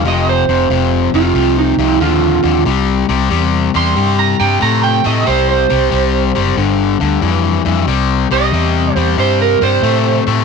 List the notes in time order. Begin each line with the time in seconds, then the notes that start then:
0.05 F1 F2 C3 D#5
0.29 C5
0.49 F1 F2 C3
0.70 F1 F2 C3
1.13 F1 F2 C3 F4
1.34 C2 F2 C3
1.59 D#4
1.77 C2 F2 C3
2.00 D#2 F2 D3 F4
2.43 D#2 F2 D3
2.65 C2 C3 G3
3.09 C2 C3 G3
3.30 E2 C3 G3
3.74 E2 C3 G3 C6
3.96 G2 C3 G3
4.19 A#5
4.40 G2 C3 G3 G5
4.60 A2 C3 A3 A#5
4.83 G5
5.04 A2 C3 A3 D#5
5.26 C2 C3 G3 C5
5.49 C5
5.70 C2 C3 G3
5.91 C2 C3 G3
6.35 F#1 C3 G3
6.57 G1 G2 D3
7.00 D2 G2 D3
7.21 F2 G2 E3
7.65 F2 G2 E3
7.87 C2 C3 G3
8.31 C2 C3 G3 D#5
8.52 E2 C3 G3
8.96 E2 C3 G3 C5
9.17 G2 C3 G3 C5
9.42 A#4
9.61 G2 C3 G3 C5
9.82 A2 C3 A3
10.27 A2 C3 A3